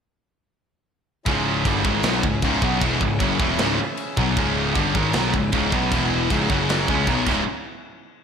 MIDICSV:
0, 0, Header, 1, 6, 480
1, 0, Start_track
1, 0, Key_signature, 4, "minor"
1, 0, Tempo, 387097
1, 1565, Time_signature, 4, 2, 24, 8
1, 10215, End_track
2, 0, Start_track
2, 0, Title_t, "Pipe organ"
2, 0, Program_c, 0, 19
2, 1557, Note_on_c, 0, 52, 66
2, 1558, Note_on_c, 0, 68, 59
2, 1560, Note_on_c, 0, 61, 65
2, 1560, Note_on_c, 0, 76, 76
2, 7278, Note_off_c, 0, 68, 0
2, 7279, Note_off_c, 0, 61, 0
2, 7327, Note_on_c, 0, 71, 66
2, 7328, Note_on_c, 0, 59, 62
2, 7801, Note_off_c, 0, 71, 0
2, 7802, Note_off_c, 0, 59, 0
2, 7828, Note_on_c, 0, 61, 68
2, 7828, Note_on_c, 0, 68, 68
2, 7992, Note_off_c, 0, 52, 0
2, 7994, Note_off_c, 0, 76, 0
2, 8046, Note_on_c, 0, 49, 66
2, 8054, Note_off_c, 0, 68, 0
2, 8057, Note_on_c, 0, 66, 63
2, 8065, Note_on_c, 0, 78, 76
2, 8491, Note_off_c, 0, 61, 0
2, 8516, Note_on_c, 0, 61, 60
2, 8518, Note_off_c, 0, 49, 0
2, 8524, Note_off_c, 0, 66, 0
2, 8525, Note_on_c, 0, 52, 75
2, 8526, Note_on_c, 0, 76, 73
2, 8527, Note_off_c, 0, 78, 0
2, 8537, Note_on_c, 0, 68, 68
2, 8963, Note_off_c, 0, 76, 0
2, 8964, Note_off_c, 0, 68, 0
2, 8969, Note_off_c, 0, 61, 0
2, 8972, Note_off_c, 0, 52, 0
2, 8988, Note_on_c, 0, 68, 67
2, 8988, Note_on_c, 0, 76, 75
2, 8994, Note_on_c, 0, 61, 61
2, 8997, Note_on_c, 0, 52, 68
2, 9215, Note_off_c, 0, 68, 0
2, 9215, Note_off_c, 0, 76, 0
2, 9219, Note_off_c, 0, 61, 0
2, 9220, Note_off_c, 0, 52, 0
2, 10215, End_track
3, 0, Start_track
3, 0, Title_t, "Distorted electric guitar"
3, 0, Program_c, 1, 30
3, 6366, Note_on_c, 1, 59, 113
3, 6603, Note_off_c, 1, 59, 0
3, 10215, End_track
4, 0, Start_track
4, 0, Title_t, "Distorted electric guitar"
4, 0, Program_c, 2, 30
4, 1579, Note_on_c, 2, 37, 84
4, 1587, Note_on_c, 2, 44, 109
4, 1596, Note_on_c, 2, 49, 101
4, 2044, Note_off_c, 2, 37, 0
4, 2049, Note_on_c, 2, 43, 92
4, 2052, Note_off_c, 2, 44, 0
4, 2057, Note_off_c, 2, 49, 0
4, 2059, Note_on_c, 2, 50, 104
4, 2068, Note_on_c, 2, 55, 99
4, 2283, Note_off_c, 2, 43, 0
4, 2288, Note_off_c, 2, 50, 0
4, 2293, Note_off_c, 2, 55, 0
4, 2300, Note_on_c, 2, 44, 91
4, 2305, Note_on_c, 2, 51, 90
4, 2318, Note_on_c, 2, 56, 99
4, 2505, Note_off_c, 2, 44, 0
4, 2510, Note_on_c, 2, 47, 97
4, 2521, Note_off_c, 2, 51, 0
4, 2526, Note_off_c, 2, 56, 0
4, 2526, Note_on_c, 2, 54, 88
4, 2531, Note_on_c, 2, 59, 99
4, 2755, Note_off_c, 2, 47, 0
4, 2763, Note_off_c, 2, 54, 0
4, 2765, Note_off_c, 2, 59, 0
4, 2775, Note_on_c, 2, 37, 58
4, 2778, Note_on_c, 2, 44, 64
4, 2967, Note_off_c, 2, 37, 0
4, 2968, Note_off_c, 2, 44, 0
4, 3014, Note_on_c, 2, 37, 87
4, 3022, Note_on_c, 2, 44, 88
4, 3027, Note_on_c, 2, 49, 104
4, 3244, Note_off_c, 2, 37, 0
4, 3249, Note_on_c, 2, 47, 96
4, 3252, Note_off_c, 2, 44, 0
4, 3255, Note_off_c, 2, 49, 0
4, 3262, Note_on_c, 2, 54, 102
4, 3264, Note_on_c, 2, 59, 109
4, 3486, Note_off_c, 2, 47, 0
4, 3492, Note_off_c, 2, 54, 0
4, 3494, Note_off_c, 2, 59, 0
4, 3509, Note_on_c, 2, 40, 90
4, 3517, Note_on_c, 2, 47, 111
4, 3528, Note_on_c, 2, 52, 112
4, 3737, Note_off_c, 2, 40, 0
4, 3740, Note_off_c, 2, 47, 0
4, 3746, Note_off_c, 2, 52, 0
4, 3748, Note_on_c, 2, 37, 68
4, 3756, Note_on_c, 2, 44, 66
4, 3935, Note_off_c, 2, 37, 0
4, 3939, Note_off_c, 2, 44, 0
4, 3982, Note_on_c, 2, 42, 96
4, 3989, Note_on_c, 2, 49, 95
4, 3995, Note_on_c, 2, 54, 93
4, 4212, Note_off_c, 2, 42, 0
4, 4216, Note_on_c, 2, 40, 94
4, 4217, Note_off_c, 2, 49, 0
4, 4220, Note_off_c, 2, 54, 0
4, 4230, Note_on_c, 2, 47, 95
4, 4235, Note_on_c, 2, 52, 97
4, 4451, Note_off_c, 2, 40, 0
4, 4457, Note_off_c, 2, 47, 0
4, 4460, Note_off_c, 2, 52, 0
4, 4466, Note_on_c, 2, 37, 88
4, 4474, Note_on_c, 2, 49, 103
4, 4476, Note_on_c, 2, 44, 96
4, 4696, Note_off_c, 2, 37, 0
4, 4699, Note_off_c, 2, 49, 0
4, 4700, Note_off_c, 2, 44, 0
4, 5185, Note_on_c, 2, 47, 92
4, 5209, Note_on_c, 2, 54, 92
4, 5210, Note_on_c, 2, 59, 109
4, 5414, Note_off_c, 2, 47, 0
4, 5425, Note_off_c, 2, 54, 0
4, 5427, Note_off_c, 2, 59, 0
4, 5430, Note_on_c, 2, 44, 94
4, 5431, Note_on_c, 2, 37, 101
4, 5440, Note_on_c, 2, 49, 107
4, 5896, Note_off_c, 2, 44, 0
4, 5897, Note_off_c, 2, 37, 0
4, 5901, Note_off_c, 2, 49, 0
4, 5907, Note_on_c, 2, 43, 91
4, 5912, Note_on_c, 2, 50, 105
4, 5917, Note_on_c, 2, 55, 104
4, 6135, Note_off_c, 2, 43, 0
4, 6137, Note_off_c, 2, 50, 0
4, 6139, Note_off_c, 2, 55, 0
4, 6144, Note_on_c, 2, 44, 96
4, 6155, Note_on_c, 2, 51, 94
4, 6171, Note_on_c, 2, 56, 97
4, 6372, Note_off_c, 2, 44, 0
4, 6378, Note_off_c, 2, 51, 0
4, 6386, Note_off_c, 2, 56, 0
4, 6400, Note_on_c, 2, 47, 97
4, 6411, Note_on_c, 2, 54, 95
4, 6416, Note_on_c, 2, 59, 100
4, 6620, Note_off_c, 2, 47, 0
4, 6625, Note_off_c, 2, 54, 0
4, 6628, Note_off_c, 2, 59, 0
4, 6639, Note_on_c, 2, 37, 62
4, 6645, Note_on_c, 2, 44, 67
4, 6818, Note_off_c, 2, 37, 0
4, 6821, Note_off_c, 2, 44, 0
4, 6868, Note_on_c, 2, 37, 100
4, 6868, Note_on_c, 2, 44, 115
4, 6874, Note_on_c, 2, 49, 105
4, 7079, Note_off_c, 2, 37, 0
4, 7084, Note_on_c, 2, 47, 100
4, 7092, Note_off_c, 2, 44, 0
4, 7096, Note_off_c, 2, 49, 0
4, 7101, Note_on_c, 2, 54, 98
4, 7108, Note_on_c, 2, 59, 103
4, 7320, Note_off_c, 2, 47, 0
4, 7328, Note_off_c, 2, 54, 0
4, 7332, Note_off_c, 2, 59, 0
4, 7332, Note_on_c, 2, 40, 95
4, 7349, Note_on_c, 2, 47, 101
4, 7350, Note_on_c, 2, 52, 109
4, 7801, Note_off_c, 2, 40, 0
4, 7808, Note_off_c, 2, 47, 0
4, 7808, Note_on_c, 2, 37, 90
4, 7811, Note_off_c, 2, 52, 0
4, 7813, Note_on_c, 2, 44, 98
4, 7825, Note_on_c, 2, 49, 96
4, 8039, Note_off_c, 2, 37, 0
4, 8042, Note_off_c, 2, 44, 0
4, 8048, Note_off_c, 2, 49, 0
4, 8061, Note_on_c, 2, 42, 81
4, 8068, Note_on_c, 2, 49, 102
4, 8071, Note_on_c, 2, 54, 93
4, 8523, Note_off_c, 2, 42, 0
4, 8527, Note_off_c, 2, 49, 0
4, 8528, Note_off_c, 2, 54, 0
4, 8548, Note_on_c, 2, 56, 83
4, 8552, Note_on_c, 2, 49, 82
4, 8562, Note_on_c, 2, 61, 81
4, 8767, Note_off_c, 2, 56, 0
4, 8769, Note_off_c, 2, 49, 0
4, 8774, Note_off_c, 2, 61, 0
4, 8796, Note_on_c, 2, 47, 86
4, 8812, Note_on_c, 2, 54, 99
4, 8815, Note_on_c, 2, 59, 105
4, 9010, Note_off_c, 2, 47, 0
4, 9018, Note_off_c, 2, 54, 0
4, 9019, Note_off_c, 2, 59, 0
4, 9022, Note_on_c, 2, 37, 88
4, 9044, Note_on_c, 2, 49, 110
4, 9045, Note_on_c, 2, 44, 107
4, 9202, Note_off_c, 2, 37, 0
4, 9213, Note_off_c, 2, 44, 0
4, 9213, Note_off_c, 2, 49, 0
4, 10215, End_track
5, 0, Start_track
5, 0, Title_t, "Picked electric bass"
5, 0, Program_c, 3, 34
5, 1565, Note_on_c, 3, 25, 91
5, 2015, Note_off_c, 3, 25, 0
5, 2045, Note_on_c, 3, 31, 96
5, 2271, Note_off_c, 3, 31, 0
5, 2293, Note_on_c, 3, 32, 114
5, 2516, Note_off_c, 3, 32, 0
5, 2526, Note_on_c, 3, 35, 88
5, 2753, Note_off_c, 3, 35, 0
5, 2764, Note_on_c, 3, 25, 74
5, 2993, Note_off_c, 3, 25, 0
5, 3012, Note_on_c, 3, 25, 94
5, 3237, Note_off_c, 3, 25, 0
5, 3249, Note_on_c, 3, 35, 100
5, 3476, Note_off_c, 3, 35, 0
5, 3496, Note_on_c, 3, 28, 91
5, 3720, Note_off_c, 3, 28, 0
5, 3730, Note_on_c, 3, 25, 81
5, 3957, Note_off_c, 3, 25, 0
5, 3971, Note_on_c, 3, 30, 100
5, 4198, Note_off_c, 3, 30, 0
5, 4206, Note_on_c, 3, 28, 107
5, 4436, Note_off_c, 3, 28, 0
5, 4487, Note_on_c, 3, 25, 89
5, 4697, Note_off_c, 3, 25, 0
5, 5174, Note_on_c, 3, 35, 98
5, 5399, Note_off_c, 3, 35, 0
5, 5424, Note_on_c, 3, 25, 91
5, 5867, Note_off_c, 3, 25, 0
5, 5897, Note_on_c, 3, 31, 97
5, 6120, Note_off_c, 3, 31, 0
5, 6133, Note_on_c, 3, 32, 108
5, 6357, Note_off_c, 3, 32, 0
5, 6378, Note_on_c, 3, 35, 93
5, 6599, Note_off_c, 3, 35, 0
5, 6619, Note_on_c, 3, 25, 76
5, 6839, Note_off_c, 3, 25, 0
5, 6862, Note_on_c, 3, 25, 103
5, 7080, Note_off_c, 3, 25, 0
5, 7096, Note_on_c, 3, 35, 98
5, 7316, Note_off_c, 3, 35, 0
5, 7338, Note_on_c, 3, 28, 98
5, 7779, Note_off_c, 3, 28, 0
5, 7815, Note_on_c, 3, 25, 99
5, 8033, Note_off_c, 3, 25, 0
5, 8050, Note_on_c, 3, 30, 103
5, 8492, Note_off_c, 3, 30, 0
5, 8542, Note_on_c, 3, 37, 85
5, 8755, Note_off_c, 3, 37, 0
5, 8774, Note_on_c, 3, 35, 101
5, 8990, Note_off_c, 3, 35, 0
5, 9011, Note_on_c, 3, 25, 95
5, 9227, Note_off_c, 3, 25, 0
5, 10215, End_track
6, 0, Start_track
6, 0, Title_t, "Drums"
6, 1565, Note_on_c, 9, 36, 113
6, 1571, Note_on_c, 9, 49, 67
6, 1689, Note_off_c, 9, 36, 0
6, 1695, Note_off_c, 9, 49, 0
6, 2049, Note_on_c, 9, 36, 92
6, 2056, Note_on_c, 9, 49, 55
6, 2173, Note_off_c, 9, 36, 0
6, 2180, Note_off_c, 9, 49, 0
6, 2290, Note_on_c, 9, 36, 105
6, 2414, Note_off_c, 9, 36, 0
6, 2519, Note_on_c, 9, 49, 76
6, 2530, Note_on_c, 9, 38, 121
6, 2643, Note_off_c, 9, 49, 0
6, 2654, Note_off_c, 9, 38, 0
6, 2770, Note_on_c, 9, 36, 95
6, 2894, Note_off_c, 9, 36, 0
6, 3001, Note_on_c, 9, 49, 68
6, 3007, Note_on_c, 9, 36, 104
6, 3125, Note_off_c, 9, 49, 0
6, 3131, Note_off_c, 9, 36, 0
6, 3249, Note_on_c, 9, 36, 100
6, 3373, Note_off_c, 9, 36, 0
6, 3490, Note_on_c, 9, 36, 105
6, 3496, Note_on_c, 9, 49, 64
6, 3614, Note_off_c, 9, 36, 0
6, 3620, Note_off_c, 9, 49, 0
6, 3731, Note_on_c, 9, 36, 98
6, 3855, Note_off_c, 9, 36, 0
6, 3971, Note_on_c, 9, 36, 100
6, 3974, Note_on_c, 9, 49, 62
6, 4095, Note_off_c, 9, 36, 0
6, 4098, Note_off_c, 9, 49, 0
6, 4210, Note_on_c, 9, 36, 102
6, 4334, Note_off_c, 9, 36, 0
6, 4444, Note_on_c, 9, 49, 71
6, 4455, Note_on_c, 9, 38, 127
6, 4568, Note_off_c, 9, 49, 0
6, 4579, Note_off_c, 9, 38, 0
6, 4926, Note_on_c, 9, 49, 60
6, 5050, Note_off_c, 9, 49, 0
6, 5173, Note_on_c, 9, 36, 111
6, 5297, Note_off_c, 9, 36, 0
6, 5414, Note_on_c, 9, 49, 61
6, 5417, Note_on_c, 9, 36, 114
6, 5538, Note_off_c, 9, 49, 0
6, 5541, Note_off_c, 9, 36, 0
6, 5889, Note_on_c, 9, 49, 55
6, 5896, Note_on_c, 9, 36, 96
6, 6013, Note_off_c, 9, 49, 0
6, 6020, Note_off_c, 9, 36, 0
6, 6137, Note_on_c, 9, 36, 105
6, 6261, Note_off_c, 9, 36, 0
6, 6363, Note_on_c, 9, 49, 68
6, 6375, Note_on_c, 9, 38, 120
6, 6487, Note_off_c, 9, 49, 0
6, 6499, Note_off_c, 9, 38, 0
6, 6618, Note_on_c, 9, 36, 89
6, 6742, Note_off_c, 9, 36, 0
6, 6847, Note_on_c, 9, 49, 63
6, 6856, Note_on_c, 9, 36, 102
6, 6971, Note_off_c, 9, 49, 0
6, 6980, Note_off_c, 9, 36, 0
6, 7096, Note_on_c, 9, 36, 100
6, 7220, Note_off_c, 9, 36, 0
6, 7336, Note_on_c, 9, 49, 70
6, 7337, Note_on_c, 9, 36, 118
6, 7460, Note_off_c, 9, 49, 0
6, 7461, Note_off_c, 9, 36, 0
6, 7817, Note_on_c, 9, 36, 106
6, 7819, Note_on_c, 9, 49, 60
6, 7941, Note_off_c, 9, 36, 0
6, 7943, Note_off_c, 9, 49, 0
6, 8057, Note_on_c, 9, 36, 103
6, 8181, Note_off_c, 9, 36, 0
6, 8298, Note_on_c, 9, 49, 68
6, 8310, Note_on_c, 9, 38, 127
6, 8422, Note_off_c, 9, 49, 0
6, 8434, Note_off_c, 9, 38, 0
6, 8535, Note_on_c, 9, 36, 108
6, 8659, Note_off_c, 9, 36, 0
6, 8766, Note_on_c, 9, 49, 60
6, 8769, Note_on_c, 9, 36, 100
6, 8890, Note_off_c, 9, 49, 0
6, 8893, Note_off_c, 9, 36, 0
6, 9007, Note_on_c, 9, 57, 91
6, 9009, Note_on_c, 9, 36, 112
6, 9131, Note_off_c, 9, 57, 0
6, 9133, Note_off_c, 9, 36, 0
6, 10215, End_track
0, 0, End_of_file